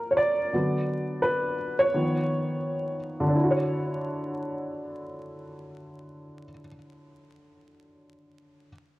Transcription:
0.00 0.49 F3 medium
0.00 0.49 A#3 medium
0.00 0.49 A4 soft
0.00 0.55 A#4 medium
0.11 0.17 C#5 medium
0.17 0.84 D5 medium
0.53 1.55 D3 soft
0.53 1.55 F#3 soft
0.53 1.55 B3 medium
1.22 1.76 B4 medium
1.79 2.95 C#5 loud
1.94 2.96 D#3 medium
1.94 2.96 F3 soft
1.94 2.97 B3 medium
3.20 6.43 D3 medium
3.28 6.51 D4 medium
3.36 6.59 E4 medium
3.43 6.66 F#4 medium
3.51 6.74 C#5 medium

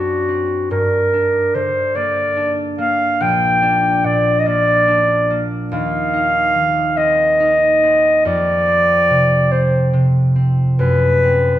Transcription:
0.00 0.74 F#2 soft
0.00 0.74 F#3 soft
0.00 0.27 C4 soft
0.00 1.12 D4 soft
0.00 0.69 F#4 medium
0.29 0.74 C4 soft
0.71 3.24 G2 soft
0.71 1.57 A#4 medium
1.14 2.35 D4 soft
1.54 3.24 D3 soft
1.54 1.98 C5 soft
1.95 2.77 A#3 soft
1.95 2.63 D5 medium
2.37 3.61 D4 soft
2.78 4.44 A#3 soft
2.78 3.24 F5 medium
3.20 5.75 A#1 soft
3.20 4.07 G5 medium
3.62 4.87 D4 soft
4.04 5.75 A#2 soft
4.04 4.41 D5 medium
4.40 4.48 D#5 soft
4.46 5.29 A#3 soft
4.46 5.46 D5 medium
4.88 5.75 D4 soft
5.30 5.75 A#3 soft
5.72 8.28 D#2 soft
5.72 6.99 F5 medium
6.14 7.39 D#4 soft
6.55 8.28 D#3 soft
6.97 7.82 C4 soft
6.97 8.25 D#5 medium
7.40 8.28 D#4 soft
7.83 8.67 C4 soft
8.25 10.83 F2 soft
8.25 9.53 D5 medium
8.68 9.50 C4 soft
9.10 9.92 C3 soft
9.51 10.34 C4 soft
9.51 9.94 C5 soft
9.93 10.82 C3 soft
10.36 11.22 C4 soft
10.79 11.59 F#2 soft
10.79 11.59 B4 medium
11.23 11.59 C4 soft

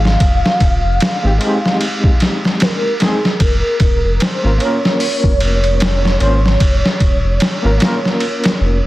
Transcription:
0.00 0.16 G#1 medium
0.00 2.17 F5 loud
0.05 snare soft
0.20 0.41 F1 medium
0.20 kick loud
0.20 ride medium
0.46 snare medium
0.60 0.81 D#1 loud
0.60 kick medium
0.60 ride medium
0.84 0.98 F1 medium
1.00 snare loud
1.00 ride medium
1.23 1.39 G#1 medium
1.23 1.36 G#3 medium
1.23 1.37 C4 medium
1.23 1.37 D#4 medium
1.23 1.38 G4 medium
1.38 2.95 G#3 medium
1.38 2.96 C4 medium
1.38 ride medium
1.43 2.97 D#4 medium
1.43 2.99 G4 loud
1.66 snare soft
1.81 ride medium
2.04 kick medium
2.20 snare medium
2.20 ride medium
2.45 snare soft
2.60 3.02 A#4 loud
2.60 snare loud
2.60 ride medium
3.00 3.27 G#3 loud
3.00 3.27 C4 medium
3.00 3.28 D#4 medium
3.00 3.42 G#4 medium
3.00 3.28 G#4 loud
3.00 snare medium
3.00 ride medium
3.25 snare soft
3.40 3.61 F1 loud
3.40 4.22 A#4 loud
3.40 kick loud
3.40 ride medium
3.80 4.01 D#1 loud
3.80 kick medium
3.80 ride medium
4.04 4.19 F1 medium
4.20 4.60 C5 loud
4.20 snare loud
4.20 ride medium
4.43 4.59 G#1 medium
4.43 4.56 A#3 medium
4.43 4.57 C#4 medium
4.43 4.57 F4 medium
4.43 4.58 A#4 medium
4.58 6.15 A#3 loud
4.58 6.16 C#4 medium
4.58 8.87 C#5 loud
4.58 ride medium
4.63 6.18 F4 medium
4.63 6.19 A#4 loud
4.85 snare medium
5.00 open hi-hat medium
5.24 6.17 F1 medium
5.24 kick medium
5.40 ride medium
5.64 ride soft
5.80 snare loud
5.80 ride medium
6.05 snare soft
6.19 6.56 G#1 medium
6.19 6.46 A#3 medium
6.19 6.47 C#4 medium
6.19 6.47 F4 medium
6.19 6.48 C5 loud
6.19 ride medium
6.46 snare soft
6.60 6.81 F1 medium
6.60 kick loud
6.60 ride medium
6.85 snare medium
7.00 7.21 D#1 loud
7.00 kick medium
7.00 ride medium
7.24 7.38 F1 loud
7.40 snare loud
7.40 ride medium
7.63 7.79 G#1 medium
7.63 7.76 A#3 medium
7.63 7.76 C#4 medium
7.63 7.77 F4 medium
7.63 7.78 A#4 medium
7.78 8.87 A#3 medium
7.78 8.87 C#4 medium
7.78 ride medium
7.82 8.87 F4 medium
7.82 8.87 A#4 loud
7.82 snare loud
8.05 snare soft
8.20 ride medium
8.44 snare loud
8.44 ride medium
8.61 8.81 F1 loud

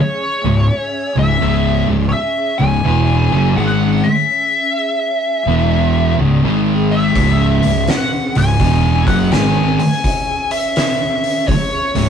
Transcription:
0.00 5.43 C#4 medium
0.00 5.43 G#4 medium
0.00 1.18 C#5 medium
0.00 5.42 E5 medium
0.44 0.67 C#1 medium
0.44 0.65 C#2 medium
0.44 0.65 G#2 medium
1.16 1.39 C#1 medium
1.16 1.36 C#2 medium
1.16 1.37 G#2 medium
1.16 1.85 E5 medium
1.41 1.84 C#1 medium
1.41 1.86 C#2 medium
1.41 1.87 G#2 loud
1.41 1.87 C#3 loud
1.87 2.11 C#1 medium
1.87 2.08 C#2 medium
1.87 2.08 G#2 medium
2.09 2.12 C#5 medium
2.09 2.56 E5 loud
2.58 2.83 C#1 medium
2.58 2.80 C#2 medium
2.58 2.80 G#2 medium
2.58 3.57 G#5 loud
2.84 3.28 E1 loud
2.84 3.30 E2 loud
2.84 3.30 B2 medium
2.84 3.30 E3 loud
3.31 3.55 F#1 medium
3.31 3.56 F#2 loud
3.31 3.56 C#3 medium
3.31 3.56 F#3 medium
3.56 4.00 G#1 loud
3.56 4.02 G#2 loud
3.56 4.03 D#3 loud
3.56 4.03 G#3 loud
3.56 4.05 F#5 loud
4.04 6.15 E5 medium
5.45 6.14 E1 medium
5.45 6.18 E2 medium
5.45 6.18 B2 medium
5.45 6.17 E4 medium
5.45 6.18 B4 medium
5.45 6.17 F#5 medium
5.49 6.18 E3 loud
6.17 6.42 C#1 medium
6.17 6.43 C#2 medium
6.17 6.43 G#2 medium
6.17 6.44 C#3 loud
6.17 6.43 C#4 medium
6.17 12.09 G#4 medium
6.17 6.43 D#5 medium
6.42 7.12 G#1 loud
6.42 7.15 G#2 loud
6.42 7.14 D#3 medium
6.42 7.16 D#3 medium
6.42 7.14 G#3 medium
6.42 7.16 G#3 medium
6.92 7.91 E5 loud
7.14 7.59 C#1 loud
7.14 7.62 C#2 medium
7.14 7.62 G#2 loud
7.14 7.62 C#3 medium
7.14 12.09 C#4 medium
7.14 12.09 E5 medium
7.14 kick loud
7.14 open hi-hat medium
7.63 7.87 C#1 medium
7.63 7.84 C#2 medium
7.63 7.84 G#2 medium
7.63 open hi-hat medium
7.87 8.37 F#5 loud
7.87 snare loud
7.87 open hi-hat medium
8.35 8.59 C#1 medium
8.35 8.56 C#2 medium
8.35 8.56 G#2 medium
8.35 9.07 G#5 loud
8.35 open hi-hat medium
8.59 9.03 E1 medium
8.59 9.06 E2 medium
8.59 9.06 B2 medium
8.59 9.07 E3 loud
8.59 kick loud
8.59 open hi-hat medium
9.07 9.30 F#1 medium
9.07 9.31 F#2 medium
9.07 9.32 C#3 medium
9.07 9.32 F#3 medium
9.07 9.33 F#5 loud
9.07 kick loud
9.07 open hi-hat medium
9.32 9.76 G#1 loud
9.32 9.78 G#2 medium
9.32 9.78 D#3 loud
9.32 9.78 G#3 loud
9.32 9.78 G#5 loud
9.32 snare loud
9.32 open hi-hat medium
9.79 10.53 G#5 loud
9.79 open hi-hat medium
10.04 kick loud
10.04 open hi-hat medium
10.51 11.47 E5 medium
10.51 open hi-hat medium
10.76 snare loud
10.76 open hi-hat medium
11.24 open hi-hat medium
11.47 12.09 C#5 medium
11.47 muted fingered electric bass stroke soft
11.47 muted distorted electric guitar stroke medium
11.47 kick loud
11.47 open hi-hat medium
11.94 12.09 C#1 medium
11.94 12.09 C#2 medium
11.94 12.09 G#2 medium
11.94 open hi-hat medium

